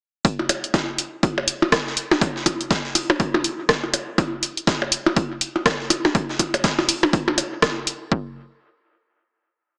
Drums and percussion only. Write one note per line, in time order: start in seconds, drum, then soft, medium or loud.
0.25 kick loud
0.25 closed hi-hat medium
0.39 percussion blips soft
0.49 closed hi-hat medium
0.49 percussion blips medium
0.64 closed hi-hat soft
0.74 kick loud
0.74 snare loud
0.74 closed hi-hat medium
0.74 percussion blips medium
0.98 closed hi-hat medium
1.23 kick loud
1.23 closed hi-hat medium
1.23 percussion blips soft
1.38 percussion blips medium
1.48 closed hi-hat medium
1.62 percussion blips medium
1.72 kick loud
1.72 cross-stick loud
1.72 snare loud
1.72 closed hi-hat medium
1.87 snare soft
1.97 closed hi-hat medium
2.11 snare soft
2.11 percussion blips soft
2.11 percussion blips medium
2.21 kick loud
2.21 closed hi-hat medium
2.21 percussion blips medium
2.36 snare soft
2.46 kick medium
2.46 closed hi-hat medium
2.46 percussion blips medium
2.61 closed hi-hat soft
2.71 kick loud
2.71 snare loud
2.71 closed hi-hat medium
2.85 snare medium
2.95 closed hi-hat medium
2.95 open hi-hat medium
2.95 percussion blips soft
3.10 percussion blips medium
3.20 kick loud
3.20 closed hi-hat medium
3.34 percussion blips medium
3.44 closed hi-hat medium
3.69 kick loud
3.69 cross-stick loud
3.69 snare loud
3.69 closed hi-hat medium
3.84 percussion blips soft
3.94 closed hi-hat medium
3.94 percussion blips medium
4.18 kick loud
4.18 closed hi-hat medium
4.18 percussion blips medium
4.43 closed hi-hat medium
4.57 closed hi-hat soft
4.67 kick loud
4.67 snare loud
4.67 closed hi-hat medium
4.67 percussion blips soft
4.82 percussion blips medium
4.92 closed hi-hat medium
5.06 percussion blips medium
5.17 kick loud
5.17 closed hi-hat medium
5.41 closed hi-hat medium
5.56 percussion blips soft
5.66 kick loud
5.66 cross-stick loud
5.66 snare loud
5.66 closed hi-hat medium
5.66 percussion blips medium
5.80 snare soft
5.90 closed hi-hat medium
5.90 closed hi-hat loud
5.90 percussion blips medium
6.05 snare soft
6.05 percussion blips medium
6.15 kick loud
6.15 closed hi-hat medium
6.29 snare soft
6.39 kick medium
6.39 closed hi-hat medium
6.39 percussion blips soft
6.54 closed hi-hat soft
6.54 percussion blips medium
6.64 kick loud
6.64 snare loud
6.64 closed hi-hat medium
6.79 snare medium
6.79 percussion blips medium
6.89 closed hi-hat loud
6.89 open hi-hat medium
7.03 percussion blips medium
7.13 kick loud
7.13 closed hi-hat medium
7.28 percussion blips soft
7.28 percussion blips medium
7.38 closed hi-hat medium
7.38 closed hi-hat loud
7.38 percussion blips medium
7.62 kick loud
7.62 cross-stick loud
7.62 snare loud
7.62 closed hi-hat medium
7.62 percussion blips medium
7.87 closed hi-hat medium
7.87 closed hi-hat loud
8.12 kick loud